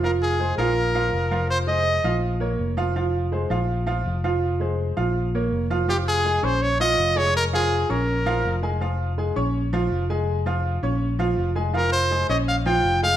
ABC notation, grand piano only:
X:1
M:4/4
L:1/8
Q:1/4=164
K:Bbdor
V:1 name="Grand piano"
[F,Ff]2 [A,Ac] [F,Ff]2 [F,Ff]2 [F,Ff]- | [F,Ff] [A,Ac]2 [F,Ff]2 [B,Bd]2 [F,Ff] | [F,Ff]2 [A,Ac] [F,Ff]2 [F,Ff]2 [F,Ff]- | [F,Ff] [A,Ac]2 [F,Ff]2 [B,Bd]2 [F,Ff] |
[F,Ff]2 [A,Aa] [Ddd']2 [F,Ff]2 [A,Aa]- | [A,Aa] [F,Ff]2 [Ddd']2 [F,Ff]2 [A,Aa] | [F,Ff]2 [A,Aa] [Ddd']2 [F,Ff]2 [A,Aa]- | [A,Aa] [F,Ff]2 [Ddd']2 [F,Ff]2 [A,Aa] |
[F,Ff]2 [A,Aa] [Ddd']2 [F,Ff]2 [A,Aa] |]